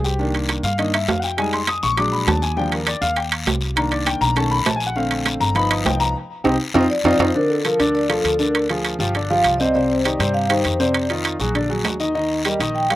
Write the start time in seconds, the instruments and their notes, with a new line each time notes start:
Already playing: upright bass C2
0.04 grand piano G4, short guiro
0.19 grand piano D#3 A#3 D4, long guiro
0.35 high timbale
0.49 high timbale, low timbale, short guiro
0.63 upright bass G2, grand piano F5, short guiro
0.78 grand piano D#3 A#3 D4 D#5, high timbale, long guiro
0.94 grand piano E5, high timbale
1.08 upright bass F2, grand piano F5, high timbale, low timbale, short guiro
1.20 grand piano F#5, short guiro
1.24 grand piano G5
1.37 grand piano G3 G#3 D#4 G#5, high timbale, long guiro
1.53 grand piano C6, high timbale
1.67 grand piano D#6, high timbale, low timbale, short guiro
1.83 upright bass A#1, grand piano C#6, short guiro
1.97 grand piano F#3 G#3 D4 D6, high timbale, long guiro
2.12 grand piano B5
2.27 upright bass D#2, grand piano A5, high timbale, low timbale, short guiro
2.42 grand piano G#5, short guiro
2.56 grand piano F3 G3 D4 G5, long guiro
2.72 grand piano A#4, high timbale
2.87 grand piano D5, high timbale, low timbale, short guiro
3.02 upright bass D#2, grand piano F5, short guiro
3.16 grand piano G5, high timbale, long guiro
3.32 high timbale
3.46 upright bass C2, high timbale, low timbale, short guiro
3.61 short guiro
3.76 grand piano D#3 A#3 D4 A#5, high timbale, long guiro
3.91 grand piano D5, high timbale
4.06 grand piano G5, high timbale, low timbale, short guiro
4.21 upright bass B1, grand piano A#5, short guiro
4.36 grand piano D#3 A3 C#4 A5, high timbale, long guiro
4.51 grand piano B5
4.66 upright bass A#1, grand piano A5, high timbale, low timbale, short guiro
4.76 grand piano G#5
4.80 short guiro
4.87 grand piano F#5
4.96 grand piano D3 A3 C4 F5, long guiro
5.11 high timbale
5.26 high timbale, low timbale, short guiro
5.40 upright bass G1, grand piano A#5, short guiro
5.55 grand piano F3 B3 D#4 B5, high timbale, long guiro
5.70 grand piano D#5, high timbale
5.85 upright bass C2, grand piano G5, high timbale, low timbale, short guiro
6.00 grand piano A#5, short guiro
6.44 upright bass C2, grand piano C4 D#4 G4, high timbale, long guiro
6.74 upright bass F2, grand piano C4 D#4 F4, high timbale, long guiro
6.90 vibraphone D5
7.04 upright bass F2, grand piano C4 D#4 F4, high timbale, long guiro
7.19 upright bass F2, grand piano C4 D#4 F4, vibraphone C5, high timbale, long guiro
7.34 grand piano D3 D4 D5, vibraphone A#4, long guiro
7.50 vibraphone A4
7.65 grand piano F3 F4 A4, vibraphone A#4, high timbale, short guiro
7.79 upright bass D2, grand piano D3 D4 D5, high timbale, short guiro
7.95 vibraphone D5, long guiro
8.09 grand piano F3 F4 A4, vibraphone A4, high timbale
8.24 upright bass D2, high timbale, short guiro
8.39 grand piano D3 D4 D5, vibraphone A#4, short guiro
8.55 high timbale, long guiro
8.69 grand piano F3 F4 G#4, high timbale
8.85 high timbale, short guiro
8.99 upright bass G1, grand piano F3 F4 G4, short guiro
9.15 grand piano D3 D4 D5, high timbale, long guiro
9.30 grand piano F3 F4 G4, vibraphone F5
9.44 upright bass C2, high timbale, short guiro
9.56 vibraphone D5 D#5, short guiro
9.60 grand piano C3 C4 C5
9.74 grand piano C3 C4 C5, vibraphone D5, long guiro
9.90 vibraphone C5
10.05 grand piano D#3 D#4 G4, vibraphone D5, high timbale, short guiro
10.19 upright bass G2, grand piano C3 C4 C5, high timbale, short guiro
10.34 vibraphone F5, long guiro
10.49 grand piano D#3 D#4 G4, vibraphone C5, high timbale
10.65 upright bass F2, high timbale, short guiro
10.79 grand piano C3 C4 C5, vibraphone D5, short guiro
10.94 high timbale, long guiro
11.10 grand piano D#3 D#4 F4, high timbale
11.24 high timbale, short guiro
11.40 upright bass A#1, grand piano F#3 F#4 G#4, short guiro
11.55 grand piano D3 D4 D5, high timbale, long guiro
11.69 grand piano F#3 F#4 G#4
11.84 upright bass D#2, high timbale, low timbale, short guiro
12.00 grand piano D#3 D#4 D#5, short guiro
12.15 grand piano D#3 D#4 D#5, long guiro
12.45 grand piano G3 G4 A#4, vibraphone D#5, high timbale, short guiro
12.60 upright bass A#1, grand piano D#3 D#4 D#5, high timbale, short guiro
12.75 vibraphone G5, long guiro
12.90 grand piano G3 G4 A#4, vibraphone F5, high timbale